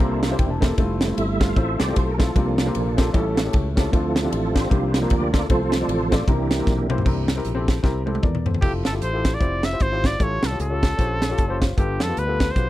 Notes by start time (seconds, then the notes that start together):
Already playing: F4 A4 C5
0.00 C2 C3 A#3 C4 D4 E4 G4 A#4, kick, ride
0.22 F5, snare, ride
0.30 A#3 C4 E4 G4 C5
0.39 E1 G5, kick, ride
0.50 A5
0.61 A#3 C4 E4 G4 A4, kick, snare, ride
0.77 F1 G3 A3 C4 E4 F4 A4, kick, ride
1.01 snare, ride
1.08 A3 C4 E4 F4 A4
1.17 G1 E5, ride
1.40 G3 A3 C4 E4 F4 A4 F5, kick, snare, ride
1.56 A1 A3 C4 E4 F4 A4 C5 E5, kick, ride
1.80 C2 D5, snare, ride
1.87 A3 C4 E4 F4 G4
1.95 B1 C5, kick, ride
2.11 A#4
2.18 A3 C4 E4 F4 A4, kick, snare, ride
2.34 C2 C3 F3 A#3 C4 D4 F4 G4 A#4, kick, ride
2.58 snare, ride
2.66 A#3 C4 F4 G4 A#4
2.75 A#1, ride
2.97 A#3 C4 F4 G4 A4, kick, snare, ride
3.12 A1 A2 G3 A3 C#4 E4 G4 A4, kick, ride
3.37 snare, ride
3.44 A3 C#4 E4 G4 A4
3.53 C#2 G4, kick, ride
3.75 A3 C4 C#4 E4 F4 G4 A4, kick, snare, ride
3.91 D2 D3 F3 A3 C4 D4 F4 A4, kick, ride
3.95 E4
4.16 C4 F4 A4, snare, ride
4.23 A3 C4 D4 F4 G4
4.32 A1, ride
4.54 A3 C4 D4 F4 G4 A4 C5, kick, snare, ride
4.69 C2 C3 F3 A#3 C4 D4 F4 G4, kick, ride
4.74 D4
4.94 snare, ride
5.01 A#3 C4 D4 F4 A#4
5.10 D2 F4 A#4 D5, kick, ride
5.32 A#3 C4 D4 F4 A4, kick, snare, ride
5.49 C2 C3 F3 A3 C4 F4 A4 C5, kick, ride
5.72 snare, ride
5.80 A3 C4 F4 A4 D5
5.89 A1, ride
6.11 A3 C4 F4 A4 D5, kick, snare, ride
6.27 C2 C3 E3 A#3 C4 D4 E4 G4 A#4, kick, ride
6.51 snare, ride
6.58 A#3 C4 E4 G4 A#4
6.67 B1, kick, snare
6.89 A#3 C4 E4 G4 C5, mid tom
6.98 floor tom
7.05 C2 C3 E3 A#3 C4 D4 E4 G4 A#4, kick, crash
7.28 snare, closed hi-hat
7.36 C4 E4 G4 A#4
7.45 A#1, closed hi-hat
7.55 C4 E4 G4 A4
7.68 kick, snare, closed hi-hat
7.83 C2 C4 E4 G4 A#4, kick, snare
8.06 C4 E4 G4 A4, high tom
8.15 high tom
8.23 E2 A#4 D5, kick, mid tom
8.35 mid tom
8.46 A4 C5, floor tom
8.54 floor tom
8.61 F1 E4 F4 G4 A4, kick, crash
8.85 G1 A4, snare, closed hi-hat
8.92 E4 F4 G4 A4
9.02 A1 C5, closed hi-hat
9.13 E4 F4 G4 A4
9.25 kick, snare, closed hi-hat
9.34 D5
9.40 F1 E4 F4 G4 C5, kick, closed hi-hat
9.63 E5, snare, closed hi-hat
9.71 E4 F4 G4 C5
9.80 G#1 C5, kick, closed hi-hat
9.91 E4 F4 G4 C5
10.04 D5, kick, snare, closed hi-hat
10.19 A1 A2 C#4 F4 G4 A4, kick, closed hi-hat
10.23 C#5
10.43 C2 A4, snare, closed hi-hat
10.51 C#4 F4 G4 A4
10.60 C#2 A4, closed hi-hat
10.70 C#4 F4 G4 A4
10.83 kick, snare, closed hi-hat
10.97 A#1 C#4 F4 G4 C5, kick, closed hi-hat
11.22 snare, closed hi-hat
11.29 C#4 F4 G4 A4
11.38 F#1 A5, kick, closed hi-hat
11.48 C#4 F4 G4 C5
11.60 F5, kick, snare, closed hi-hat
11.77 G1 G2 B3 F4 G4 A4, kick, closed hi-hat
12.00 F2 A4, snare, closed hi-hat
12.07 B3 F4 G4 A4
12.17 D2 B4, closed hi-hat
12.27 B3 F4 G4 A4
12.40 kick, snare, closed hi-hat
12.51 B3 C5
12.55 B1 F4 G4 B4, kick, closed hi-hat